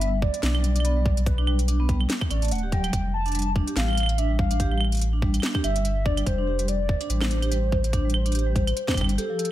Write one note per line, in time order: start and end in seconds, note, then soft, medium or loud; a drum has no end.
0.00 0.30 G1 loud
0.00 0.09 G3 medium
0.00 0.19 E5 loud
0.00 closed hi-hat medium
0.22 0.42 D5 medium
0.22 kick loud
0.34 closed hi-hat medium
0.43 2.07 B1 loud
0.43 0.51 D4 medium
0.43 1.28 D5 loud
0.43 snare loud
0.43 closed hi-hat medium
0.55 0.61 G3 medium
0.55 claves medium
0.64 closed hi-hat medium
0.76 0.82 D4 medium
0.76 closed hi-hat medium
0.80 claves soft
0.85 0.92 B3 loud
0.85 closed hi-hat medium
0.96 1.02 G3 medium
1.06 kick loud
1.17 closed hi-hat medium
1.26 1.68 B4 medium
1.26 kick loud
1.26 closed hi-hat medium
1.38 1.44 D4 medium
1.38 claves soft
1.47 1.55 G3 medium
1.47 claves medium
1.59 closed hi-hat soft
1.68 1.76 D4 medium
1.68 closed hi-hat medium
1.80 1.86 B3 loud
1.89 1.97 G3 medium
1.89 kick loud
1.89 closed hi-hat soft
2.01 claves medium
2.10 snare loud
2.10 closed hi-hat medium
2.21 kick loud
2.21 claves medium
2.31 2.53 A1 loud
2.31 2.35 C#4 medium
2.31 2.53 D5 medium
2.31 closed hi-hat medium
2.31 claves medium
2.42 2.48 A3 medium
2.42 closed hi-hat soft
2.44 closed hi-hat soft
2.48 2.90 D1 medium
2.48 closed hi-hat soft
2.51 2.74 F#5 loud
2.51 closed hi-hat medium
2.55 closed hi-hat soft
2.58 closed hi-hat soft
2.63 2.69 G4 medium
2.72 2.83 F#3 medium
2.72 3.13 G5 loud
2.72 kick loud
2.72 closed hi-hat soft
2.84 2.90 G3 medium
2.84 closed hi-hat medium
2.84 claves medium
2.93 3.63 F1 loud
2.93 kick loud
2.93 closed hi-hat medium
3.14 3.53 A5 loud
3.26 3.32 D4 medium
3.26 closed hi-hat soft
3.28 closed hi-hat soft
3.32 closed hi-hat soft
3.35 3.43 G3 medium
3.35 closed hi-hat medium
3.39 closed hi-hat soft
3.42 closed hi-hat soft
3.56 3.63 D4 medium
3.56 kick loud
3.67 3.73 G4 medium
3.67 closed hi-hat soft
3.76 5.40 A1 loud
3.76 3.84 G3 medium
3.76 4.20 F5 loud
3.76 snare loud
3.76 closed hi-hat medium
3.88 claves soft
3.91 claves soft
3.93 claves soft
3.95 closed hi-hat medium
3.95 claves medium
3.97 claves medium
4.00 claves medium
4.03 claves medium
4.06 closed hi-hat medium
4.06 claves medium
4.18 4.26 D4 medium
4.18 4.40 E5 medium
4.18 closed hi-hat medium
4.30 4.36 G3 medium
4.39 4.81 F5 medium
4.39 kick loud
4.51 4.57 D4 medium
4.51 closed hi-hat soft
4.60 4.67 G4 medium
4.60 kick loud
4.60 closed hi-hat medium
4.71 4.78 G3 medium
4.71 claves soft
4.78 claves soft
4.81 claves medium
4.85 claves soft
4.92 closed hi-hat soft
4.95 closed hi-hat soft
4.97 closed hi-hat soft
4.99 closed hi-hat soft
5.01 closed hi-hat medium
5.13 5.19 D4 medium
5.22 5.30 G3 medium
5.22 kick loud
5.34 closed hi-hat soft
5.34 claves soft
5.40 5.51 D4 medium
5.40 snare loud
5.40 closed hi-hat medium
5.40 claves soft
5.47 claves soft
5.55 5.61 G4 medium
5.55 kick loud
5.55 claves medium
5.64 6.23 G1 loud
5.64 5.72 G3 medium
5.64 6.07 E5 loud
5.64 closed hi-hat medium
5.64 claves medium
5.76 closed hi-hat soft
5.85 closed hi-hat medium
6.06 6.13 D4 medium
6.06 6.28 D5 loud
6.06 kick loud
6.17 6.23 G3 medium
6.17 closed hi-hat soft
6.17 claves medium
6.26 6.97 F1 loud
6.26 6.70 C5 loud
6.26 kick loud
6.26 closed hi-hat medium
6.38 6.44 D4 medium
6.47 6.55 G4 medium
6.59 6.65 G3 medium
6.59 closed hi-hat soft
6.68 7.09 D5 loud
6.68 closed hi-hat medium
6.89 kick loud
7.01 7.07 D4 medium
7.01 closed hi-hat medium
7.10 8.73 A1 medium
7.10 7.17 G3 medium
7.10 9.14 C5 loud
7.10 closed hi-hat medium
7.21 snare loud
7.21 claves medium
7.31 7.38 D4 medium
7.31 closed hi-hat medium
7.42 7.48 G4 medium
7.42 closed hi-hat medium
7.42 claves medium
7.51 7.59 G3 medium
7.51 closed hi-hat medium
7.72 kick loud
7.84 closed hi-hat medium
7.93 8.01 D4 medium
7.93 kick loud
7.93 closed hi-hat medium
8.05 8.11 G3 medium
8.10 closed hi-hat soft
8.14 claves medium
8.26 8.32 D4 medium
8.26 closed hi-hat soft
8.32 8.42 G4 medium
8.32 closed hi-hat soft
8.35 closed hi-hat medium
8.39 closed hi-hat soft
8.46 8.52 G3 medium
8.56 kick loud
8.56 closed hi-hat soft
8.67 closed hi-hat medium
8.67 claves medium
8.77 closed hi-hat medium
8.88 8.94 D4 medium
8.88 kick loud
8.88 snare loud
8.88 claves soft
8.91 kick medium
8.91 claves soft
8.94 9.18 G1 loud
8.94 9.08 G3 loud
8.94 closed hi-hat medium
8.94 claves medium
8.97 kick medium
8.97 claves medium
9.01 claves medium
9.04 claves medium
9.09 closed hi-hat medium
9.18 9.29 G4 medium
9.18 9.52 A4 medium
9.18 closed hi-hat medium
9.30 9.33 F3 medium
9.39 9.44 G4 medium
9.39 closed hi-hat medium
9.45 closed hi-hat medium